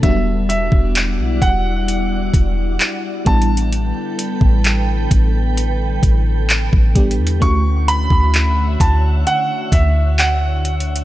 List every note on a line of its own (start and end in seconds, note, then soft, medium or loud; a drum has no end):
0.02 0.70 E1 loud
0.02 0.09 F#3 medium
0.02 3.23 G3 medium
0.02 3.22 B3 medium
0.02 3.23 D4 medium
0.02 3.23 E4 medium
0.02 3.23 F#4 medium
0.02 3.23 D5 medium
0.02 0.48 E5 medium
0.02 3.23 F#5 medium
0.02 kick loud
0.02 closed hi-hat medium
0.08 3.24 G3 medium
0.49 1.44 E5 medium
0.49 closed hi-hat medium
0.72 1.20 E1 loud
0.72 kick medium
0.95 clap loud
0.95 closed hi-hat medium
1.19 1.41 B1 loud
1.42 2.30 E1 loud
1.42 3.32 F#5 loud
1.42 kick medium
1.42 closed hi-hat medium
1.88 closed hi-hat medium
2.34 2.78 E1 loud
2.34 kick medium
2.34 closed hi-hat medium
2.80 clap loud
2.80 closed hi-hat medium
3.25 3.93 A1 loud
3.25 11.04 D3 medium
3.25 6.91 G3 medium
3.25 6.91 B3 medium
3.25 6.92 D4 medium
3.25 6.93 E4 medium
3.25 7.38 A4 medium
3.25 7.38 B4 medium
3.25 7.38 G5 medium
3.25 6.00 A5 loud
3.25 kick loud
3.25 closed hi-hat soft
3.42 closed hi-hat medium
3.57 closed hi-hat medium
3.73 closed hi-hat medium
4.19 closed hi-hat medium
4.41 5.08 A1 loud
4.41 kick medium
4.64 clap loud
4.64 closed hi-hat medium
5.11 6.00 A1 loud
5.11 kick medium
5.11 closed hi-hat medium
5.57 closed hi-hat medium
6.03 6.69 A1 loud
6.03 kick medium
6.03 closed hi-hat medium
6.50 clap loud
6.50 closed hi-hat medium
6.73 7.20 A1 loud
6.73 kick loud
6.95 7.41 G3 medium
6.95 7.42 B3 medium
6.95 7.42 D4 medium
6.95 7.42 G4 medium
6.95 kick medium
6.95 closed hi-hat soft
6.95 open hi-hat medium
7.11 closed hi-hat medium
7.19 7.40 E2 loud
7.27 closed hi-hat medium
7.40 8.08 D2 loud
7.40 11.04 A3 medium
7.40 11.04 C#4 medium
7.40 11.04 E4 medium
7.40 11.04 F#4 medium
7.40 11.04 C#5 medium
7.40 11.04 E5 medium
7.40 11.04 F#5 medium
7.40 7.89 C#6 loud
7.40 kick loud
7.40 closed hi-hat medium
7.88 8.83 B5 loud
7.88 closed hi-hat medium
8.10 8.77 D2 medium
8.10 kick medium
8.34 clap loud
8.34 closed hi-hat medium
8.80 9.24 D2 loud
8.80 9.23 A5 medium
8.80 kick medium
8.80 closed hi-hat medium
9.27 9.74 F#5 loud
9.27 closed hi-hat medium
9.72 11.04 D2 loud
9.72 10.20 E5 medium
9.72 kick medium
9.72 closed hi-hat medium
10.19 11.04 F#5 medium
10.19 clap loud
10.19 closed hi-hat medium
10.65 closed hi-hat medium
10.80 closed hi-hat medium
10.96 closed hi-hat medium